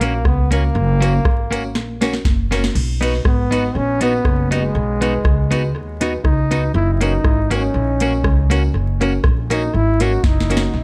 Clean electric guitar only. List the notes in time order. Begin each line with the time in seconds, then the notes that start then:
0.01 A#3 C#4 F#4
0.51 A#3 C#4 F#4
1.01 A#3 C#4 F#4
1.51 A#3 C#4 F#4
2.01 A#3 C#4 F#4
2.51 A#3 C#4 F#4
3.01 B3 D#4 F#4
3.51 B3 D#4 F#4
4.01 B3 D#4 F#4
4.51 B3 D#4 F#4
5.01 B3 D#4 F#4
5.51 B3 D#4 F#4
6.01 B3 D#4 F#4
6.51 B3 D#4 F#4
7.01 A#3 C#4 F#4
7.51 A#3 C#4 F#4
8.01 A#3 C#4 F#4
8.50 A#3 C#4 F#4
9.01 A#3 C#4 F#4
9.50 A#3 C#4 F#4
10.00 A#3 C#4 F#4
10.50 A#3 C#4 F#4